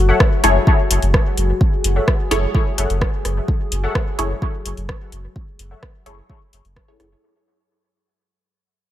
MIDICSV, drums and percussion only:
0, 0, Header, 1, 2, 480
1, 0, Start_track
1, 0, Key_signature, 3, "minor"
1, 0, Tempo, 468750
1, 1647, Time_signature, 4, 2, 24, 8
1, 9124, End_track
2, 0, Start_track
2, 0, Title_t, "Drums"
2, 206, Note_on_c, 9, 36, 120
2, 207, Note_on_c, 9, 37, 78
2, 309, Note_off_c, 9, 36, 0
2, 310, Note_off_c, 9, 37, 0
2, 447, Note_on_c, 9, 42, 68
2, 550, Note_off_c, 9, 42, 0
2, 687, Note_on_c, 9, 36, 123
2, 789, Note_off_c, 9, 36, 0
2, 928, Note_on_c, 9, 42, 90
2, 1030, Note_off_c, 9, 42, 0
2, 1049, Note_on_c, 9, 42, 33
2, 1152, Note_off_c, 9, 42, 0
2, 1167, Note_on_c, 9, 36, 124
2, 1168, Note_on_c, 9, 37, 75
2, 1269, Note_off_c, 9, 36, 0
2, 1270, Note_off_c, 9, 37, 0
2, 1408, Note_on_c, 9, 42, 71
2, 1511, Note_off_c, 9, 42, 0
2, 1647, Note_on_c, 9, 36, 117
2, 1749, Note_off_c, 9, 36, 0
2, 1888, Note_on_c, 9, 42, 81
2, 1990, Note_off_c, 9, 42, 0
2, 2127, Note_on_c, 9, 36, 116
2, 2128, Note_on_c, 9, 37, 77
2, 2229, Note_off_c, 9, 36, 0
2, 2230, Note_off_c, 9, 37, 0
2, 2368, Note_on_c, 9, 42, 67
2, 2471, Note_off_c, 9, 42, 0
2, 2607, Note_on_c, 9, 36, 118
2, 2709, Note_off_c, 9, 36, 0
2, 2848, Note_on_c, 9, 42, 88
2, 2950, Note_off_c, 9, 42, 0
2, 2970, Note_on_c, 9, 42, 33
2, 3073, Note_off_c, 9, 42, 0
2, 3087, Note_on_c, 9, 36, 120
2, 3089, Note_on_c, 9, 37, 74
2, 3189, Note_off_c, 9, 36, 0
2, 3191, Note_off_c, 9, 37, 0
2, 3328, Note_on_c, 9, 37, 33
2, 3328, Note_on_c, 9, 42, 68
2, 3431, Note_off_c, 9, 37, 0
2, 3431, Note_off_c, 9, 42, 0
2, 3567, Note_on_c, 9, 36, 117
2, 3669, Note_off_c, 9, 36, 0
2, 3808, Note_on_c, 9, 42, 79
2, 3910, Note_off_c, 9, 42, 0
2, 4047, Note_on_c, 9, 36, 112
2, 4048, Note_on_c, 9, 37, 82
2, 4149, Note_off_c, 9, 36, 0
2, 4150, Note_off_c, 9, 37, 0
2, 4288, Note_on_c, 9, 42, 69
2, 4390, Note_off_c, 9, 42, 0
2, 4526, Note_on_c, 9, 36, 113
2, 4629, Note_off_c, 9, 36, 0
2, 4767, Note_on_c, 9, 42, 85
2, 4870, Note_off_c, 9, 42, 0
2, 4889, Note_on_c, 9, 42, 31
2, 4991, Note_off_c, 9, 42, 0
2, 5007, Note_on_c, 9, 36, 110
2, 5007, Note_on_c, 9, 37, 82
2, 5109, Note_off_c, 9, 36, 0
2, 5109, Note_off_c, 9, 37, 0
2, 5246, Note_on_c, 9, 42, 65
2, 5349, Note_off_c, 9, 42, 0
2, 5487, Note_on_c, 9, 36, 120
2, 5589, Note_off_c, 9, 36, 0
2, 5727, Note_on_c, 9, 42, 82
2, 5829, Note_off_c, 9, 42, 0
2, 5967, Note_on_c, 9, 36, 116
2, 5967, Note_on_c, 9, 37, 86
2, 6069, Note_off_c, 9, 36, 0
2, 6069, Note_off_c, 9, 37, 0
2, 6207, Note_on_c, 9, 42, 72
2, 6310, Note_off_c, 9, 42, 0
2, 6446, Note_on_c, 9, 36, 122
2, 6549, Note_off_c, 9, 36, 0
2, 6687, Note_on_c, 9, 42, 87
2, 6790, Note_off_c, 9, 42, 0
2, 6809, Note_on_c, 9, 42, 32
2, 6911, Note_off_c, 9, 42, 0
2, 6927, Note_on_c, 9, 36, 117
2, 6927, Note_on_c, 9, 37, 82
2, 7029, Note_off_c, 9, 36, 0
2, 7030, Note_off_c, 9, 37, 0
2, 7167, Note_on_c, 9, 37, 38
2, 7167, Note_on_c, 9, 42, 65
2, 7270, Note_off_c, 9, 37, 0
2, 7270, Note_off_c, 9, 42, 0
2, 9124, End_track
0, 0, End_of_file